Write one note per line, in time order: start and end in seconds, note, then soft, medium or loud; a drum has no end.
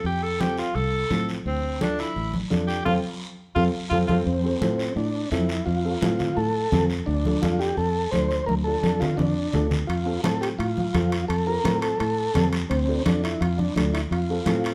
0.04 0.61 F2 medium
0.04 0.24 G4 medium
0.04 long guiro medium
0.23 0.42 A4 medium
0.40 0.65 C4 medium
0.40 0.65 F4 medium
0.40 0.58 G4 medium
0.40 0.65 A4 medium
0.40 high conga medium
0.40 short guiro medium
0.57 0.77 F4 medium
0.57 short guiro medium
0.75 1.03 C2 medium
0.75 1.28 A4 loud
0.75 high conga soft
0.75 long guiro medium
1.10 1.38 A2 medium
1.10 1.35 C4 medium
1.10 1.35 F4 medium
1.10 1.35 A4 medium
1.10 high conga medium
1.10 short guiro medium
1.29 high conga soft
1.29 short guiro medium
1.46 2.02 D2 medium
1.46 1.84 C4 medium
1.46 long guiro medium
1.81 2.05 D4 medium
1.81 2.02 D4 medium
1.81 2.05 F4 medium
1.81 2.05 A4 medium
1.81 high conga medium
1.81 short guiro medium
1.99 2.34 E4 medium
1.99 short guiro medium
2.16 2.44 A1 medium
2.16 high conga soft
2.16 long guiro medium
2.34 high conga medium
2.50 2.79 F2 medium
2.50 2.75 D4 medium
2.50 2.75 F4 medium
2.50 2.75 A4 medium
2.50 high conga medium
2.50 short guiro medium
2.67 2.84 G4 medium
2.67 high conga soft
2.67 short guiro medium
2.85 3.00 F2 medium
2.85 2.97 C4 medium
2.85 2.97 F4 medium
2.85 2.94 F4 medium
2.85 2.97 A4 medium
2.85 high conga medium
2.85 long guiro medium
3.56 3.69 F2 medium
3.56 3.68 C4 medium
3.56 3.64 F4 medium
3.56 3.68 F4 medium
3.56 3.68 A4 medium
3.56 high conga medium
3.56 long guiro medium
3.90 4.04 F2 medium
3.90 4.03 C4 medium
3.90 3.99 F4 medium
3.90 4.03 F4 medium
3.90 4.03 A4 medium
3.90 high conga medium
3.90 long guiro loud
4.08 4.22 F2 medium
4.08 4.20 C4 medium
4.08 4.17 F4 medium
4.08 4.20 F4 medium
4.08 4.21 A4 medium
4.08 high conga medium
4.08 long guiro medium
4.26 4.55 F2 medium
4.26 4.93 C4 medium
4.26 long guiro medium
4.44 4.50 C4 medium
4.44 4.50 F4 medium
4.44 4.51 A4 medium
4.61 4.90 A2 medium
4.61 4.86 C4 medium
4.61 4.86 F4 medium
4.61 4.86 A4 medium
4.61 high conga medium
4.61 short guiro medium
4.79 short guiro medium
4.96 5.25 A2 loud
4.96 5.30 D4 medium
4.96 high conga soft
4.96 long guiro medium
5.31 5.60 F2 loud
5.31 5.50 C4 medium
5.31 5.65 E4 medium
5.31 5.51 F4 medium
5.31 5.51 A4 medium
5.31 high conga medium
5.31 short guiro medium
5.49 high conga soft
5.49 short guiro medium
5.66 5.95 F2 medium
5.66 6.39 F4 medium
5.66 long guiro medium
5.84 5.91 C4 medium
5.84 5.91 F4 medium
5.84 5.91 A4 medium
6.01 6.30 A2 medium
6.01 6.27 C4 medium
6.01 6.27 F4 medium
6.01 6.27 A4 medium
6.01 high conga medium
6.01 short guiro medium
6.19 low conga medium
6.19 short guiro medium
6.36 6.65 A2 medium
6.36 6.86 A4 loud
6.36 high conga soft
6.36 long guiro medium
6.72 7.00 F2 loud
6.72 6.91 C4 medium
6.72 6.91 F4 medium
6.72 6.92 A4 medium
6.72 high conga medium
6.72 low conga medium
6.72 short guiro medium
6.90 high conga soft
6.90 short guiro medium
7.06 7.36 D2 medium
7.06 7.43 D4 medium
7.06 long guiro medium
7.25 7.32 D4 medium
7.25 7.32 F4 medium
7.25 7.32 A4 medium
7.25 high conga medium
7.42 7.71 F2 medium
7.42 7.67 D4 medium
7.42 7.61 F4 medium
7.42 7.68 F4 medium
7.42 7.68 A4 medium
7.42 high conga medium
7.42 short guiro medium
7.59 7.76 G4 medium
7.59 short guiro medium
7.77 8.06 F2 medium
7.77 8.11 A4 loud
7.77 high conga soft
7.77 long guiro medium
8.11 8.41 D2 medium
8.11 8.31 D4 medium
8.11 8.32 F4 medium
8.11 8.32 A4 medium
8.11 8.45 C5 medium
8.11 high conga medium
8.11 short guiro medium
8.31 high conga soft
8.31 short guiro medium
8.46 8.76 D2 medium
8.46 8.55 A#4 medium
8.46 high conga medium
8.46 long guiro medium
8.64 8.72 D4 medium
8.64 8.72 F4 medium
8.64 9.01 A4 medium
8.64 8.73 A4 medium
8.83 9.11 F2 medium
8.83 9.08 D4 medium
8.83 9.08 F4 medium
8.83 9.09 A4 medium
8.83 high conga medium
8.83 short guiro medium
9.00 9.17 F4 medium
9.00 low conga loud
9.00 short guiro medium
9.17 9.46 F2 medium
9.17 9.67 D4 medium
9.17 low conga medium
9.17 long guiro medium
9.53 9.82 D2 loud
9.53 9.72 D4 medium
9.53 9.72 F4 medium
9.53 9.73 A4 medium
9.53 low conga medium
9.53 short guiro medium
9.71 low conga medium
9.71 short guiro medium
9.87 10.17 F2 medium
9.87 10.21 F4 medium
9.87 high timbale medium
9.87 long guiro medium
10.06 10.12 C4 medium
10.06 10.13 F4 medium
10.06 10.13 A4 medium
10.23 10.52 A2 medium
10.23 10.48 C4 medium
10.23 10.49 F4 medium
10.23 10.42 A4 medium
10.23 10.49 A4 medium
10.23 high conga medium
10.23 high timbale medium
10.23 short guiro medium
10.41 10.49 G4 medium
10.41 high timbale medium
10.41 short guiro medium
10.59 10.87 A2 medium
10.59 11.25 F4 medium
10.59 high conga soft
10.59 high timbale medium
10.59 long guiro medium
10.78 high conga medium
10.94 11.23 F2 loud
10.94 11.13 C4 medium
10.94 11.13 F4 medium
10.94 11.13 A4 medium
10.94 high conga medium
10.94 high timbale medium
10.94 short guiro medium
11.12 high conga soft
11.12 high timbale medium
11.12 short guiro medium
11.28 11.58 F2 medium
11.28 11.47 A4 medium
11.28 high timbale medium
11.28 long guiro medium
11.47 11.53 C4 medium
11.47 11.54 F4 medium
11.47 11.54 A4 medium
11.47 11.80 A#4 medium
11.64 11.93 A2 medium
11.64 11.89 C4 medium
11.64 11.89 F4 medium
11.64 11.89 A4 medium
11.64 high conga medium
11.64 high timbale medium
11.64 short guiro medium
11.82 11.98 A4 medium
11.82 high timbale medium
11.82 short guiro medium
12.00 12.28 A2 medium
12.00 12.49 A4 loud
12.00 high conga soft
12.00 high timbale medium
12.00 long guiro medium
12.34 12.64 F2 medium
12.34 12.53 C4 medium
12.34 12.54 F4 medium
12.34 12.53 A4 medium
12.34 high conga medium
12.34 low conga medium
12.34 high timbale medium
12.34 low timbale medium
12.34 short guiro medium
12.53 high conga soft
12.53 high timbale medium
12.53 short guiro medium
12.70 12.99 D2 medium
12.70 13.03 C4 medium
12.70 high timbale medium
12.70 long guiro medium
12.88 12.94 D4 medium
12.88 12.94 F4 medium
12.88 12.94 A4 medium
13.05 13.34 F2 medium
13.05 13.22 D4 medium
13.05 13.31 D4 medium
13.05 13.31 F4 medium
13.05 13.31 A4 medium
13.05 high conga medium
13.05 high timbale medium
13.05 short guiro medium
13.24 13.42 E4 medium
13.24 high timbale medium
13.24 short guiro medium
13.41 13.69 F2 medium
13.41 13.59 F4 medium
13.41 high conga soft
13.41 high timbale medium
13.41 long guiro medium
13.58 13.75 D4 medium
13.58 high conga medium
13.76 14.04 D2 loud
13.76 13.94 D4 medium
13.76 13.84 D4 medium
13.76 13.95 F4 medium
13.76 13.95 A4 medium
13.76 high conga medium
13.76 high timbale medium
13.76 short guiro medium
13.94 14.02 E4 medium
13.94 high conga soft
13.94 high timbale medium
13.94 short guiro medium
14.11 14.39 F2 medium
14.11 14.74 F4 medium
14.11 high timbale medium
14.11 long guiro medium
14.30 14.35 C4 medium
14.30 14.36 F4 medium
14.30 14.36 A4 medium
14.46 14.74 A2 medium
14.46 14.72 C4 medium
14.46 14.72 F4 medium
14.46 14.72 A4 medium
14.46 high conga medium
14.46 high timbale medium
14.46 short guiro medium
14.64 high timbale medium
14.64 short guiro medium